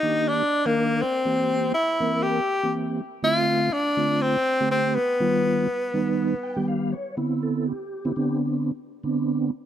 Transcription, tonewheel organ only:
0.03 0.43 D#3 medium
0.03 0.43 A#3 medium
0.03 0.43 D4 medium
0.03 0.43 G4 medium
0.65 1.03 D#3 medium
0.65 1.03 A#3 medium
0.65 1.03 D4 medium
0.65 1.04 A#4 medium
1.25 1.72 E3 medium
1.25 1.73 A#3 medium
1.25 1.73 C4 medium
1.25 1.73 G4 medium
2.00 2.40 E3 medium
2.00 2.40 A#3 medium
2.00 2.40 C4 medium
2.00 2.40 A#4 medium
2.63 3.01 E3 medium
2.63 3.01 A#3 medium
2.63 3.01 C4 medium
2.63 3.01 G4 medium
3.23 3.70 D3 medium
3.23 3.70 A3 medium
3.23 3.70 C4 medium
3.23 3.70 F4 medium
3.97 4.37 D3 medium
3.97 4.37 A3 medium
3.97 4.37 C4 medium
3.97 4.37 F4 medium
4.60 4.98 D3 medium
4.60 4.98 A3 medium
4.60 4.98 C4 medium
4.60 4.98 G4 medium
5.20 5.67 D#3 medium
5.20 5.67 G3 medium
5.20 5.67 B3 medium
5.20 5.67 F4 medium
5.94 6.34 D#3 medium
5.94 6.34 G3 medium
5.94 6.34 B3 medium
5.94 6.34 D#4 medium
6.43 6.66 G5 medium
6.56 6.95 D#3 medium
6.56 6.95 G3 medium
6.56 6.95 B3 medium
6.56 6.95 G4 medium
6.68 6.91 F5 medium
6.92 7.15 C#5 medium
7.17 7.72 D3 medium
7.17 7.72 B3 medium
7.17 7.73 C4 medium
7.17 7.73 E4 medium
7.43 7.66 A4 medium
7.68 8.37 G4 medium
8.05 8.12 D3 medium
8.05 8.12 B3 medium
8.05 8.12 C4 medium
8.05 8.12 E4 medium
8.16 8.71 D3 medium
8.16 8.71 B3 medium
8.16 8.72 C4 medium
8.16 8.72 D4 medium
9.04 9.50 D3 medium
9.04 9.51 B3 medium
9.04 9.50 C4 medium
9.04 9.51 D4 medium

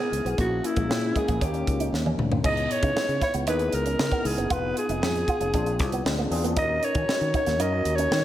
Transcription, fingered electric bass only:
0.12 0.23 C#2 medium
0.25 0.36 B1 medium
0.38 0.59 A#1 loud
0.77 0.87 A#1 medium
0.89 1.11 A#2 medium
1.29 1.39 A#1 medium
1.41 1.62 D#2 medium
1.67 1.88 C#2 medium
1.93 2.14 D#2 medium
2.18 2.39 D2 medium
2.44 2.66 C#2 loud
2.83 2.93 C#3 medium
2.96 muted fingered electric bass stroke soft
3.08 3.19 C#3 medium
3.34 3.47 C#2 medium
3.47 3.68 D#2 medium
3.73 3.94 C#2 medium
3.99 4.10 C#3 medium
4.25 4.35 C#2 medium
4.37 4.48 F#1 medium
4.51 4.72 F1 loud
4.89 5.00 F1 medium
5.02 5.23 F2 loud
5.40 5.51 F1 medium
5.54 5.80 A#1 medium
5.80 6.01 C2 medium
6.05 6.26 D2 medium
6.31 6.57 E2 medium
6.57 6.78 D#2 loud
6.95 7.06 D#3 medium
7.08 muted fingered electric bass stroke soft
7.21 7.31 D#3 medium
7.47 7.60 D#2 medium
7.60 7.81 F#2 medium
7.85 8.06 D#2 medium
8.11 8.21 D#3 medium

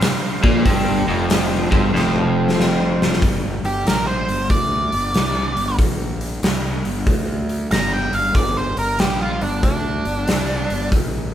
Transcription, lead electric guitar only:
3.65 3.86 G4 medium
3.87 4.07 A#4 medium
4.07 4.49 C5 medium
4.50 5.75 D5 medium
7.72 7.92 A#5 loud
7.94 8.14 G5 medium
8.14 8.35 F5 medium
8.36 8.56 D5 medium
8.57 8.78 C5 medium
8.79 8.99 A#4 medium
8.99 9.20 G4 medium
9.21 9.42 F4 medium
9.42 9.63 D4 medium
9.64 10.88 D4 medium

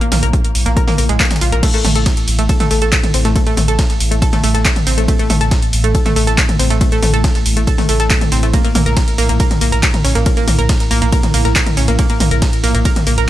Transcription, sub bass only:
0.12 0.22 A#1 loud
0.23 0.33 A#1 medium
0.55 0.65 A#1 loud
0.66 0.76 A#1 medium
0.98 1.09 A#1 loud
1.09 1.20 A#1 medium
1.41 1.52 A#1 loud
1.52 1.63 A#1 medium
1.85 1.95 A1 loud
1.96 2.06 A1 medium
2.28 2.38 A1 loud
2.39 2.49 A1 medium
2.71 2.81 A1 loud
2.82 2.92 A1 medium
3.14 3.24 A1 loud
3.25 3.35 A1 medium
3.57 3.68 A1 loud
3.68 3.79 A1 medium
4.00 4.11 A1 loud
4.11 4.22 A1 medium
4.43 4.54 A1 loud
4.55 4.65 A1 medium
4.87 4.97 A1 loud
4.98 5.08 A1 medium
5.30 5.40 A1 loud
5.41 5.51 A1 medium
5.73 5.83 A1 loud
5.84 5.94 A1 medium
6.16 6.27 A1 loud
6.27 6.38 A1 medium
6.59 6.70 A1 loud
6.70 6.81 A1 medium
7.02 7.13 A1 loud
7.13 7.24 A1 medium
7.46 7.56 A1 loud
7.57 7.67 A1 medium
7.89 7.99 A1 loud
8.00 8.10 A1 medium
8.32 8.42 A1 loud
8.43 8.53 A1 medium
8.75 8.86 A#1 loud
8.86 8.97 A#1 medium
9.18 9.28 A#1 loud
9.29 9.40 A#1 medium
9.61 9.72 A#1 loud
9.72 9.83 A#1 medium
10.05 10.15 A#1 loud
10.16 10.26 A#1 medium
10.48 10.58 A#1 loud
10.59 10.69 A#1 medium
10.91 11.01 A#1 loud
11.02 11.12 A#1 medium
11.34 11.44 A#1 loud
11.45 11.55 A#1 medium
11.77 11.88 A#1 loud
11.88 11.99 A#1 medium
12.20 12.31 A#1 loud
12.31 12.42 A#1 medium
12.63 12.74 A#1 loud
12.74 12.85 A#1 medium
13.07 13.17 A#1 loud
13.18 13.28 A#1 medium

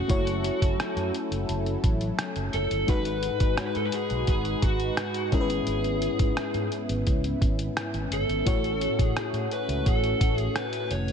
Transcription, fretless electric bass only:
0.09 0.49 F#1 loud
0.62 0.75 F#1 medium
0.79 muted fretless electric bass stroke soft
0.96 1.09 F#2 medium
1.31 1.44 F#1 medium
1.49 1.75 F#1 medium
1.84 2.10 A1 medium
2.36 2.49 F#1 medium
2.54 2.67 F#1 medium
2.71 2.84 G1 medium
2.88 3.28 G#1 medium
3.40 3.54 G#1 medium
3.76 3.89 G#2 medium
4.10 4.24 B1 medium
4.28 4.54 G#1 medium
4.62 4.89 G#1 medium
5.32 5.59 G#1 medium
5.67 6.06 G#1 loud
6.20 6.33 G#2 medium
6.37 muted fretless electric bass stroke soft
6.54 6.67 G#2 medium
6.89 7.02 G#1 medium
7.07 7.33 C#2 medium
7.42 7.68 G#1 medium
7.94 8.07 G#1 medium
8.11 8.24 G1 medium
8.28 8.42 G#1 medium
8.47 8.86 A1 loud
8.99 9.12 A1 medium
9.33 9.46 A2 medium
9.69 9.82 C#2 medium
9.86 10.12 A1 medium
10.21 10.47 A1 medium
10.91 11.12 F1 medium

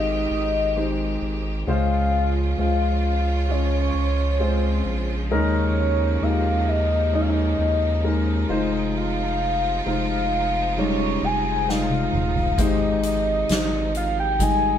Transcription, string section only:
0.00 1.64 D#3 medium
0.00 1.64 G#3 medium
0.00 1.64 C4 medium
0.00 1.64 G4 medium
1.67 8.45 C#3 medium
1.67 14.78 F3 medium
1.67 5.27 C#4 medium
1.67 5.27 F4 medium
5.30 8.45 A#3 medium
5.30 14.78 D#4 medium
8.49 14.78 C3 medium
8.49 12.54 F4 medium

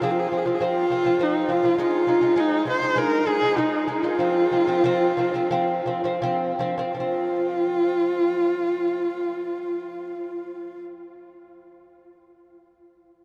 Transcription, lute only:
0.02 0.25 F3 loud
0.02 0.26 C4 loud
0.32 0.43 F3 medium
0.32 0.44 C4 medium
0.46 0.58 F3 medium
0.46 0.58 C4 medium
0.61 0.84 F3 loud
0.61 0.85 C4 loud
0.90 1.02 F3 medium
0.90 1.03 C4 medium
1.05 1.16 F3 medium
1.05 1.17 C4 medium
1.19 1.43 F3 medium
1.19 1.43 C4 loud
1.49 1.60 F3 medium
1.49 1.61 C4 medium
1.63 1.75 F3 medium
1.63 1.76 C4 medium
1.78 2.02 G#3 medium
1.78 2.02 D#4 loud
2.07 2.19 G#3 medium
2.07 2.20 D#4 medium
2.21 2.33 G#3 medium
2.21 2.34 D#4 medium
2.36 2.60 G#3 medium
2.36 2.61 D#4 loud
2.65 2.78 G#3 medium
2.65 2.79 D#4 medium
2.81 2.93 G#3 medium
2.81 2.94 D#4 medium
2.96 3.20 G#3 loud
2.96 3.21 D#4 loud
3.26 3.39 G#3 medium
3.26 3.39 D#4 medium
3.42 3.54 G#3 medium
3.42 3.55 D#4 medium
3.57 3.82 G#3 medium
3.57 3.82 D#4 loud
3.87 4.00 G#3 medium
3.87 4.01 D#4 medium
4.03 4.16 G#3 medium
4.03 4.17 D#4 medium
4.19 4.45 F3 medium
4.19 4.45 C4 loud
4.51 4.65 F3 medium
4.51 4.65 C4 medium
4.67 4.81 F3 medium
4.67 4.81 C4 loud
4.84 5.11 F3 loud
4.84 5.12 C4 loud
5.17 5.31 F3 medium
5.17 5.32 C4 medium
5.34 5.48 F3 medium
5.34 5.49 C4 loud
5.51 5.79 F3 loud
5.51 5.80 C4 loud
5.86 6.01 F3 medium
5.86 6.02 C4 medium
6.04 6.19 F3 medium
6.04 6.20 C4 loud
6.22 6.52 F3 loud
6.22 6.53 C4 loud
6.59 6.75 F3 medium
6.59 6.75 C4 loud
6.78 6.94 F3 medium
6.78 6.94 C4 medium
6.95 11.01 F3 medium
7.00 11.06 C4 medium

